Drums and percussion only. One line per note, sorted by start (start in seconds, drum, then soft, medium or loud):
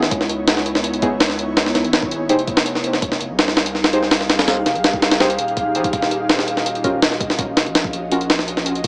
0.03 snare medium
0.11 kick loud
0.11 closed hi-hat medium
0.21 snare soft
0.29 closed hi-hat medium
0.48 snare loud
0.48 closed hi-hat medium
0.57 snare medium
0.66 closed hi-hat medium
0.75 snare medium
0.84 closed hi-hat medium
0.94 closed hi-hat soft
1.02 kick loud
1.02 closed hi-hat medium
1.20 snare loud
1.20 open hi-hat medium
1.30 snare soft
1.39 closed hi-hat medium
1.57 snare loud
1.57 closed hi-hat medium
1.66 snare medium
1.75 snare medium
1.75 closed hi-hat medium
1.85 closed hi-hat soft
1.93 snare loud
1.93 closed hi-hat medium
2.03 kick loud
2.11 closed hi-hat medium
2.29 closed hi-hat medium
2.39 closed hi-hat soft
2.47 kick loud
2.47 closed hi-hat medium
2.57 snare loud
2.66 closed hi-hat medium
2.75 snare soft
2.84 closed hi-hat medium
2.93 snare medium
3.02 kick loud
3.02 closed hi-hat medium
3.12 snare soft
3.21 closed hi-hat medium
3.39 snare loud
3.39 closed hi-hat medium
3.48 snare medium
3.57 snare loud
3.66 closed hi-hat medium
3.75 snare soft
3.84 snare loud
3.93 closed hi-hat medium
4.03 snare soft
4.11 snare loud
4.11 open hi-hat medium
4.21 snare soft
4.30 snare loud
4.30 closed hi-hat medium
4.39 snare loud
4.39 closed hi-hat medium
4.48 snare loud
4.48 closed hi-hat medium
4.66 snare medium
4.66 closed hi-hat medium
4.75 closed hi-hat soft
4.84 snare loud
4.84 closed hi-hat medium
4.93 kick loud
5.02 snare loud
5.02 closed hi-hat medium
5.11 snare loud
5.11 closed hi-hat medium
5.20 snare loud
5.30 closed hi-hat medium
5.39 closed hi-hat medium
5.48 closed hi-hat soft
5.57 kick medium
5.57 closed hi-hat medium
5.75 closed hi-hat medium
5.84 kick loud
5.84 closed hi-hat medium
5.93 kick loud
5.93 closed hi-hat medium
6.02 snare soft
6.11 closed hi-hat medium
6.29 snare loud
6.29 closed hi-hat medium
6.39 snare medium
6.48 closed hi-hat medium
6.57 snare medium
6.66 closed hi-hat medium
6.75 closed hi-hat soft
6.84 kick loud
6.84 closed hi-hat medium
7.02 snare loud
7.02 open hi-hat medium
7.12 snare soft
7.21 kick medium
7.21 closed hi-hat medium
7.30 snare medium
7.39 kick loud
7.39 closed hi-hat medium
7.57 snare loud
7.57 closed hi-hat medium
7.66 closed hi-hat soft
7.75 snare loud
7.75 closed hi-hat medium
7.84 kick loud
7.93 closed hi-hat medium
8.12 closed hi-hat medium
8.21 closed hi-hat soft
8.30 snare loud
8.30 closed hi-hat medium
8.39 snare medium
8.48 closed hi-hat medium
8.57 snare soft
8.66 closed hi-hat medium
8.75 closed hi-hat soft
8.84 kick loud
8.84 closed hi-hat medium